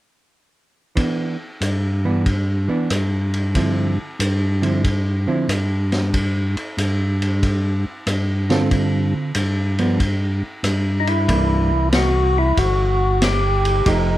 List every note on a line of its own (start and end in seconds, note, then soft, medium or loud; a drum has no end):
0.95 1.35 E3 soft
0.95 1.36 B3 soft
0.95 1.36 D4 soft
0.95 kick soft
0.95 ride medium
1.61 2.69 G2 medium
1.61 hi-hat pedal medium
1.61 ride medium
2.05 2.24 E3 soft
2.05 2.24 B3 soft
2.05 2.24 D4 medium
2.26 kick soft
2.26 ride soft
2.68 2.88 E3 medium
2.68 2.88 B3 medium
2.68 2.89 D4 medium
2.90 3.99 G2 medium
2.90 cross-stick medium
2.90 hi-hat pedal soft
2.90 ride medium
3.34 ride soft
3.55 3.94 D3 soft
3.55 3.95 F3 soft
3.55 3.94 C4 soft
3.55 3.95 E4 soft
3.55 kick soft
3.55 ride medium
4.19 5.27 G2 medium
4.19 hi-hat pedal medium
4.19 ride medium
4.62 4.81 D3 soft
4.62 4.81 F3 soft
4.62 4.82 C4 soft
4.62 4.82 E4 soft
4.62 ride soft
4.84 kick soft
4.84 ride soft
5.27 5.47 D3 soft
5.27 5.46 F3 medium
5.27 5.47 C4 medium
5.27 5.47 E4 medium
5.48 6.56 G2 medium
5.48 cross-stick soft
5.48 hi-hat pedal soft
5.48 ride medium
5.92 snare soft
5.92 ride soft
6.14 kick soft
6.14 ride soft
6.57 ride soft
6.77 7.85 G2 medium
6.77 hi-hat pedal medium
6.77 ride medium
7.22 ride soft
7.43 kick soft
7.43 ride soft
8.06 9.14 G2 medium
8.06 cross-stick soft
8.06 hi-hat pedal soft
8.06 ride medium
8.50 9.31 D3 medium
8.50 9.31 C4 medium
8.50 9.31 F4 medium
8.50 9.32 A4 medium
8.50 snare soft
8.50 ride soft
8.71 kick soft
8.71 ride soft
9.35 10.43 G2 medium
9.35 hi-hat pedal medium
9.35 ride medium
9.78 9.98 F3 soft
9.78 9.98 B3 medium
9.78 9.98 D4 medium
9.78 ride soft
10.00 kick soft
10.00 ride soft
10.63 11.71 G2 medium
10.63 cross-stick medium
10.63 hi-hat pedal medium
10.63 ride medium
11.00 11.08 D#4 medium
11.07 11.89 E4 medium
11.07 ride soft
11.28 12.53 C2 medium
11.28 13.09 E3 soft
11.28 13.09 A#3 soft
11.28 13.09 D4 medium
11.28 kick soft
11.28 ride medium
11.92 12.38 F#4 medium
11.92 snare medium
11.92 hi-hat pedal soft
11.92 ride medium
12.38 12.59 E4 medium
12.57 13.82 G1 medium
12.57 13.24 F#4 medium
12.57 kick soft
12.57 ride medium
13.22 13.89 G4 medium
13.22 snare medium
13.22 hi-hat pedal medium
13.22 ride medium
13.65 ride soft
13.86 14.18 F1 medium
13.86 14.18 F3 soft
13.86 14.18 A3 medium
13.86 14.18 D#4 medium
13.86 14.18 G4 medium
13.86 kick soft
13.86 ride medium